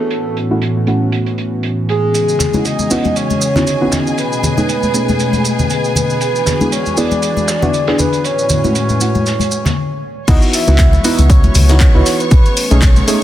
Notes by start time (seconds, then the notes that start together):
Already playing: B3 F#4 A4
0.11 A2 E3 C#4, closed hi-hat
0.37 closed hi-hat
0.51 A3 C#4 E4 F#4
0.62 closed hi-hat
0.87 A3 C#4 E4 F#4, closed hi-hat
1.12 closed hi-hat
1.26 closed hi-hat
1.38 closed hi-hat
1.63 closed hi-hat
1.89 G#4, closed hi-hat
2.14 C#3 G#4 D#5 G#5, closed hi-hat, maracas
2.29 maracas
2.39 snare, closed hi-hat, low conga, maracas
2.53 B3 C#4 D#4 E4 F#4, high conga, maracas
2.65 D#5, closed hi-hat, maracas
2.79 high conga, maracas
2.90 B3 C#4 D#4 E4 F#4, open hi-hat, maracas
3.04 closed hi-hat, high conga, maracas
3.16 C#5, closed hi-hat, maracas
3.30 high conga, maracas
3.41 closed hi-hat, maracas
3.56 B3 C#4 D#4 E4 F#4, snare, low conga, maracas
3.67 closed hi-hat, maracas
3.81 B3 C#4 D#4 E4 F#4
3.92 snare, closed hi-hat, low conga, maracas
4.07 maracas
4.18 B2 A3 C#4 B4, closed hi-hat, maracas
4.32 maracas
4.43 closed hi-hat, low conga, maracas
4.57 A3 B3 C#4 D#4 G#4, high conga, maracas
4.69 closed hi-hat, maracas
4.83 high conga, maracas
4.93 A3 B3 C#4 D#4 G#4, closed hi-hat, maracas
5.08 high conga, maracas
5.20 closed hi-hat, maracas
5.33 closed hi-hat, high conga, maracas
5.44 closed hi-hat, maracas
5.59 low conga, maracas
5.70 closed hi-hat, maracas
5.84 maracas
5.95 B4, closed hi-hat, low conga, maracas
6.10 maracas
6.21 E3 D4 F#4 B4, closed hi-hat, maracas
6.36 maracas
6.46 snare, closed hi-hat, low conga, maracas
6.61 B3 D4 E4 G#4, high conga, maracas
6.72 C#5, closed hi-hat, maracas
6.86 high conga, maracas
6.97 B3 D4 E4 G#4 D5, open hi-hat, maracas
7.11 closed hi-hat, high conga, maracas
7.22 closed hi-hat, maracas
7.37 high conga, maracas
7.48 snare, closed hi-hat, maracas
7.62 B3 D4 E4 F#4, low conga, maracas
7.74 closed hi-hat, maracas
7.87 B3 D4 E4 G#4, snare, closed hi-hat
7.99 B4, low conga, maracas
8.13 closed hi-hat, maracas
8.24 A2 C#4 E4 F#4 B4 C#5, closed hi-hat, maracas
8.39 maracas
8.49 closed hi-hat, low conga, maracas
8.64 A3 C#4 E4 F#4, high conga, maracas
8.75 closed hi-hat, maracas
8.89 high conga, maracas
9.00 A3 C#4 E4 F#4, closed hi-hat, maracas
9.15 high conga, maracas
9.26 snare, closed hi-hat, maracas
9.40 closed hi-hat, high conga, maracas
9.51 maracas
9.65 snare, closed hi-hat, low conga, maracas
10.28 C#2 E3 B3 D#4 E4 F#4 B4 C#5 D#5 C#6, kick, closed hi-hat, crash, maracas
10.42 closed hi-hat, maracas
10.53 E5, snare, closed hi-hat, open hi-hat, maracas
10.67 C#2 B3 D#4 E4 F#4, closed hi-hat, high conga, maracas
10.78 kick, snare, clap, closed hi-hat, maracas
10.93 closed hi-hat, high conga, maracas
11.04 B3 D#4 E4 F#4, open hi-hat, maracas
11.19 C#2, closed hi-hat, high conga, maracas
11.30 C#5, kick, closed hi-hat, maracas
11.44 closed hi-hat, high conga, maracas
11.55 C#2, closed hi-hat, open hi-hat, low conga, maracas
11.69 B3 D#4 E4 F#4, snare, closed hi-hat, maracas
11.80 kick, snare, clap, closed hi-hat, maracas
11.95 C#2 B3 D#4 E4 F#4
12.06 snare, closed hi-hat, open hi-hat, maracas
12.20 B4, closed hi-hat, maracas
12.31 B1 A3 C#4 G#4, kick, closed hi-hat, maracas
12.46 closed hi-hat, maracas
12.57 closed hi-hat, open hi-hat, maracas
12.71 B1 A3 C#4 D#4 G#4, closed hi-hat, high conga, maracas
12.82 kick, snare, clap, closed hi-hat, maracas
12.96 closed hi-hat, high conga, maracas
13.07 A3 C#4 D#4 G#4, closed hi-hat, open hi-hat, maracas